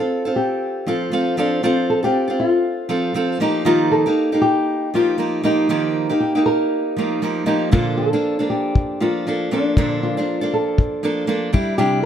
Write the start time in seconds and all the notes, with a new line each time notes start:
Already playing: A4
0.00 C4 F4 A4
0.25 C4 F4 A4
0.36 G4
0.87 F3 C4 F4 A4
1.12 F3 C4 F4 A4
1.37 F3 C4 D4 F4 A4
1.63 F3 C4 F4 A4
1.90 A4
2.03 C4 F4 G4 A4
2.28 C4 F4 A4
2.40 F4
2.89 F3 C4 F4 A4
3.14 F3 C4 F4 A4
3.40 F3 A#3 D#4 G4
3.65 D#3 F3 A#3 D#4 F4 G4
3.91 A4
4.06 A#3 D#4 G4
4.32 A#3 D#4 G4
4.42 G4
4.94 F3 A#3 D#4 F4 G4
5.18 F3 A#3 D#4 G4
5.43 F3 A#3 D#4 G4
5.69 D#3 F3 A#3 D#4 G4
6.09 A#3 D#4 G4
6.20 G4
6.35 A#3 D#4 G4
6.46 A#4
6.97 F3 A#3 D#4 G4
7.22 F3 A#3 D#4 G4
7.46 F3 A#3 D#4 G4
7.71 A#2 D3 F3 A#3 D4 F4 A4, kick
7.97 A4
8.13 F3 A#3 D4 A4
8.39 F3 A#3 D4 A4
8.50 G4
8.75 kick
9.00 F3 A#3 D4 F4 A4
9.27 F3 A#3 D4 A4
9.51 F3 A#3 D4 A4
9.77 A#2 D3 F3 A#3 D4 A4, kick
10.03 F4
10.17 F3 A#3 D4 A4
10.41 F3 A#3 D4 A4
10.53 A4
10.78 kick
11.03 F3 A#3 D4 A4
11.27 F3 A#3 D4 A4
11.53 G3 D4 E4 G4, kick
11.78 C3 G3 D4 E4 G4